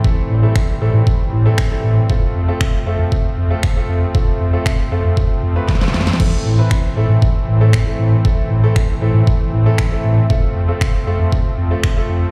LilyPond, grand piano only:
\new Staff \with { instrumentName = "Grand piano" } { \time 4/4 \key a \minor \tempo 4 = 117 <a c' e' a'>8 r16 <a c' e' a'>8 r16 <a c' e' a'>4 r16 <a c' e' a'>16 r16 <a c' e' a'>8 r16 | <a c' f' a'>8 r16 <a c' f' a'>8 r16 <a c' f' a'>4 r16 <a c' f' a'>16 r16 <a c' f' a'>8 r16 | <a c' f' a'>8 r16 <a c' f' a'>8 r16 <a c' f' a'>4 r16 <a c' f' b'>16 r16 <a c' f' a'>8 r16 | <a c' e' a'>8 r16 <a c' e' b'>8 r16 <a c' e' a'>4 r16 <a c' e' a'>16 r16 <a c' e' a'>8 r16 |
<a c' e' a'>8 r16 <a c' e' a'>8 r16 <a c' e' a'>4 r16 <a c' e' a'>16 r16 <a c' e' a'>8 r16 | <a c' f' a'>8 r16 <a c' f' a'>8 r16 <a c' f' a'>4 r16 <a c' f' a'>16 r16 <a c' f' a'>8 r16 | }